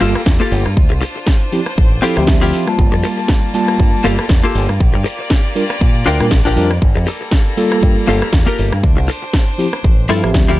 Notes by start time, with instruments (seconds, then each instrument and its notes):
Already playing: violin section G3 A#3 F4 A4
0.00 fingered electric bass G1, tine electric piano G3 A#3 F4 A4, clean electric guitar A#3 F4 G4 A4, open hi-hat
0.15 cross-stick
0.26 fingered electric bass E2, kick, snare
0.40 clean electric guitar A#3 F4 G4 A4
0.52 fingered electric bass G1, open hi-hat
0.66 fingered electric bass G2, cross-stick
0.76 fingered electric bass D2, violin section D4 C5, kick
0.90 fingered electric bass C2, muted clean electric guitar stroke
1.01 muted clean electric guitar stroke, open hi-hat
1.16 muted clean electric guitar stroke
1.27 kick, snare
1.52 tine electric piano F3 C4 E4 G4, open hi-hat
1.66 cross-stick
1.78 fingered electric bass A1, kick
2.02 tine electric piano F3 C4 E4 A4, clean electric guitar C4 E4 F4 G4, open hi-hat
2.17 fingered electric bass D2, tine electric piano F3 C4 G4 E5, cross-stick
2.27 kick, snare
2.41 clean electric guitar C4 E4 F4 G4
2.53 open hi-hat
2.67 tine electric piano G3 A#3 F4 A5, cross-stick
2.79 fingered electric bass G1, violin section G3 A#3 A5, kick
2.92 fingered electric bass F2, muted clean electric guitar stroke
3.04 muted clean electric guitar stroke, open hi-hat
3.18 muted clean electric guitar stroke
3.28 kick, snare
3.54 tine electric piano G3 A#3 F4 A5, open hi-hat
3.68 cross-stick
3.80 fingered electric bass G2, kick
4.04 fingered electric bass G1, tine electric piano G3 A#3 F4 A4, clean electric guitar A#3 F4 G4 A4, open hi-hat
4.19 cross-stick
4.29 fingered electric bass E2, kick, snare
4.43 clean electric guitar A#3 F4 G4 A4
4.55 fingered electric bass G1, open hi-hat
4.69 fingered electric bass G2, cross-stick
4.80 fingered electric bass A#1, violin section A#3 F4 G4 D5, kick
4.94 fingered electric bass G2, muted clean electric guitar stroke
5.04 muted clean electric guitar stroke, open hi-hat
5.19 muted clean electric guitar stroke
5.30 kick, snare
5.55 tine electric piano G3 D4 F4 A#4, open hi-hat
5.70 cross-stick
5.81 fingered electric bass A#2, kick
6.06 fingered electric bass D2, clean electric guitar D4 F4 G4 A#4, open hi-hat
6.20 fingered electric bass A#2, tine electric piano G3 D4 F4 A#4, cross-stick
6.31 fingered electric bass A#1, kick, snare
6.45 fingered electric bass A#1, clean electric guitar D4 F4 G4 A#4
6.56 fingered electric bass F2, tine electric piano G3 D4 F4 A#4, open hi-hat
6.71 cross-stick
6.82 fingered electric bass G1, violin section G3 A#3 A4, kick
6.95 fingered electric bass F2, muted clean electric guitar stroke
7.07 muted clean electric guitar stroke, open hi-hat
7.21 muted clean electric guitar stroke
7.31 kick, snare
7.57 tine electric piano G3 A#3 F4 A4, open hi-hat
7.72 cross-stick
7.83 fingered electric bass G2, kick
8.07 fingered electric bass G1, tine electric piano G3 A#3 F4 A4, clean electric guitar A#3 F4 G4 A4, open hi-hat
8.22 cross-stick
8.33 fingered electric bass E2, kick, snare
8.46 clean electric guitar A#3 F4 G4 A#4
8.58 fingered electric bass G1, open hi-hat
8.72 fingered electric bass G2, cross-stick
8.84 fingered electric bass D2, violin section D4 C5, kick
8.97 fingered electric bass C2, muted clean electric guitar stroke
9.08 muted clean electric guitar stroke, open hi-hat
9.22 muted clean electric guitar stroke
9.33 kick, snare
9.58 tine electric piano F3 C4 E4 G4, open hi-hat
9.73 cross-stick
9.84 fingered electric bass A1, kick
10.09 fingered electric bass G2, tine electric piano F3 C4 E4 A4, clean electric guitar C4 E4 F4 A4, open hi-hat
10.23 fingered electric bass A1, tine electric piano F3 C4 G4 E5, cross-stick
10.34 fingered electric bass D2, kick, snare
10.48 fingered electric bass D2, clean electric guitar C4 E4 F4 G4